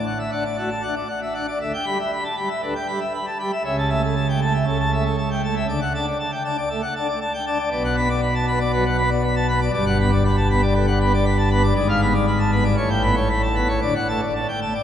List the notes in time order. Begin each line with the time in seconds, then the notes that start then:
0.06 F#5
0.19 E5
0.32 D4 F#5
0.45 D5
0.58 A3 F#4
0.70 A5
0.83 D4 F#5
0.96 D5
1.09 F#5
1.22 E5
1.34 D4 F#5
1.48 D5
1.61 D2 D3 E5
1.74 G5
1.86 G3 B5
2.00 E5
2.12 B5
2.25 A5
2.37 G3 B5
2.49 E5
2.62 D2 D3 B4
2.75 G5
2.87 G3 B5
3.00 E5
3.14 B5
3.27 A5
3.40 G3 B5
3.52 E5
3.64 C#2 C#3 E5
3.78 A5
3.90 A3 E5
4.03 A4
4.16 A5
4.29 G5
4.42 A3 A5
4.54 E5
4.66 C#2 C#3 A4
4.80 A5
4.92 A3 E5
5.05 A4
5.18 A5
5.31 G5
5.44 A3 A5
5.56 E5
5.69 D2 D3 D5
5.82 F#5
5.95 D4 A5
6.07 D5
6.20 A5
6.32 G5
6.45 D4 A5
6.58 D5
6.70 A3 A4
6.82 F#5
6.96 D4 A5
7.08 D5
7.21 A5
7.34 G5
7.47 D4 A5
7.59 D5
7.71 B1 B2 D5
7.85 F#5
7.97 B3 B5
8.10 D5
8.23 B5
8.35 A5
8.48 B3 B5
8.61 D5
8.73 F#3 B4
8.86 F#5
8.98 B3 B5
9.11 D5
9.24 B5
9.36 A5
9.48 B3 B5
9.62 D5
9.74 G1 G2 D5
9.87 F#5
9.99 B3 B5
10.12 D5
10.25 B5
10.37 A5
10.50 B3 B5
10.62 D5
10.75 D3 B4
10.87 F#5
11.01 B3 B5
11.14 D5
11.26 B5
11.38 A5
11.51 B3 B5
11.64 D5
11.76 G#1 G#2 D5
11.89 F5
12.02 B3 B5
12.15 D5
12.27 B5
12.40 A5
12.52 B3 B5
12.65 D5
12.77 A1 A2 C#5
12.90 G5
13.03 B3 B5
13.16 C#5
13.30 B5
13.43 A5
13.55 B3 B5
13.68 C#5
13.82 D2 D3 D5
13.95 F#5
14.08 A3 A5
14.22 D5
14.35 A5
14.48 G5
14.61 A3 A5
14.75 D5